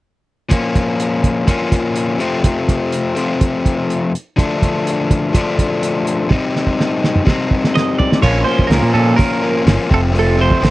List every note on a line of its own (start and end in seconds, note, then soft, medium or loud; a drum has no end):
0.49 1.45 A#2 medium
0.49 1.47 F3 medium
0.49 1.46 A#3 medium
0.49 1.47 C#4 medium
0.49 kick medium
0.49 closed hi-hat medium
0.75 kick medium
0.75 closed hi-hat medium
1.00 closed hi-hat medium
1.24 kick medium
1.24 closed hi-hat medium
1.47 2.18 A#2 medium
1.47 2.19 F3 medium
1.47 2.19 A#3 medium
1.47 2.20 C#4 medium
1.47 kick medium
1.47 closed hi-hat medium
1.72 kick medium
1.72 closed hi-hat medium
1.96 closed hi-hat medium
2.18 3.14 F2 medium
2.18 3.14 C3 medium
2.18 3.17 F3 medium
2.18 3.16 A3 medium
2.18 3.14 C4 medium
2.18 closed hi-hat medium
2.44 kick medium
2.44 closed hi-hat medium
2.69 kick medium
2.69 closed hi-hat soft
2.92 closed hi-hat medium
3.15 4.13 F2 medium
3.15 4.12 C3 medium
3.15 4.12 F3 medium
3.15 4.12 A3 medium
3.15 4.11 C4 medium
3.15 closed hi-hat medium
3.41 kick medium
3.41 closed hi-hat medium
3.66 kick medium
3.66 closed hi-hat soft
3.90 closed hi-hat medium
4.15 closed hi-hat medium
4.36 5.32 D3 medium
4.36 5.32 F3 medium
4.36 5.33 A3 medium
4.36 5.33 D4 medium
4.36 kick medium
4.36 closed hi-hat medium
4.62 kick medium
4.62 closed hi-hat medium
4.87 closed hi-hat medium
5.11 kick medium
5.11 closed hi-hat medium
5.33 6.28 D3 medium
5.33 6.29 F3 medium
5.33 6.29 A3 medium
5.33 6.30 D4 medium
5.33 kick loud
5.33 closed hi-hat medium
5.59 kick medium
5.59 closed hi-hat medium
5.83 closed hi-hat medium
6.07 closed hi-hat medium
6.29 7.24 C3 medium
6.29 7.25 G3 medium
6.29 7.25 C4 medium
6.29 7.26 D#4 medium
6.29 kick medium
6.29 high tom soft
6.56 snare soft
6.67 kick soft
6.80 snare medium
7.04 snare medium
7.16 mid tom medium
7.25 8.20 C3 medium
7.25 8.21 G3 medium
7.25 8.21 C4 medium
7.25 8.22 D#4 medium
7.25 kick loud
7.25 snare medium
7.51 kick medium
7.64 snare medium
7.75 7.98 D#5 medium
7.75 snare medium
7.99 8.22 D5 medium
7.99 floor tom medium
8.12 snare medium
8.22 8.43 A#1 loud
8.22 8.69 A#2 medium
8.22 8.46 F3 medium
8.22 8.45 A#3 medium
8.22 8.44 C#4 medium
8.22 8.44 C#5 medium
8.22 kick loud
8.22 crash medium
8.44 8.71 F3 medium
8.44 8.71 A#3 medium
8.44 8.71 C#4 medium
8.44 8.68 C5 medium
8.59 kick medium
8.67 8.80 C#2 medium
8.67 9.15 A#2 medium
8.67 8.96 F3 medium
8.67 8.93 A#4 medium
8.67 open hi-hat medium
8.72 8.94 A#3 medium
8.72 8.92 C#4 medium
8.72 snare loud
8.82 8.92 A#2 medium
8.93 9.14 A#2 medium
8.93 9.17 F3 soft
8.93 9.17 A#3 medium
8.93 9.18 C#4 medium
8.93 9.16 A4 medium
9.16 9.43 A#2 medium
9.16 9.43 F3 medium
9.16 9.41 A#3 medium
9.16 9.40 C#4 medium
9.16 9.62 A#4 medium
9.16 kick loud
9.16 open hi-hat soft
9.42 9.64 A#2 medium
9.42 9.66 F3 medium
9.42 9.66 A#3 medium
9.42 9.67 C#4 medium
9.65 9.77 G1 medium
9.65 9.89 A#2 medium
9.65 9.90 F3 medium
9.65 9.90 A#3 medium
9.65 9.89 C#4 medium
9.65 snare loud
9.65 open hi-hat soft
9.89 10.50 F1 medium
9.89 10.11 F2 medium
9.89 10.12 C3 medium
9.89 10.13 F3 medium
9.89 10.14 A3 medium
9.89 10.14 C4 medium
9.89 kick medium
9.94 10.00 A4 medium
10.12 10.59 F2 medium
10.12 10.60 C3 medium
10.12 10.39 F3 medium
10.12 10.38 A3 medium
10.12 10.36 C4 medium
10.12 open hi-hat soft
10.19 10.39 A4 medium
10.37 10.62 F3 medium
10.37 10.62 A3 medium
10.37 10.62 C4 medium
10.41 10.70 C5 medium
10.51 kick medium
10.60 10.70 A1 medium
10.60 10.70 F2 medium
10.60 10.70 C3 medium
10.60 10.70 F3 medium
10.60 10.70 A3 medium
10.60 10.70 C4 medium
10.60 open hi-hat medium
10.65 snare loud